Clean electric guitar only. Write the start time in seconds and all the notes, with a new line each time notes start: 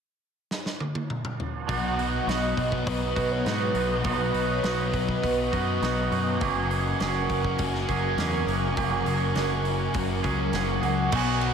1.67 B2 F#3 B3 D#4 F#4
1.97 B3 D#4 F#4
2.26 F#3 B3 D#4 F#4
3.16 B3 D#4 F#4
3.45 F#3 B3 D#4 F#4
3.74 B3 D#4 F#4
4.03 B2 F#3 B3 D#4 F#4
4.33 B3 D#4 F#4
4.63 F#3 B3 D#4 F#4
5.52 B3 D#4 F#4
5.82 F#3 B3 D#4 F#4
6.12 B3 D#4 F#4
6.40 F#3 A#3 C#4 G#4
6.70 A#3 C#4 G#4
6.99 F#3 A#3 C#4 G#4
7.88 A#3 C#4 G#4
8.17 F#3 A#3 C#4 G#4
8.47 A#3 C#4 G#4
8.76 F#3 A#3 C#4 G#4
9.05 A#3 C#4 G#4
9.35 F#3 A#3 C#4 G#4
10.23 A#3 C#4 G#4
10.52 F#3 A#3 C#4 G#4
10.81 A#3 C#4 G#4
11.12 B2 F#3 D#4 F#4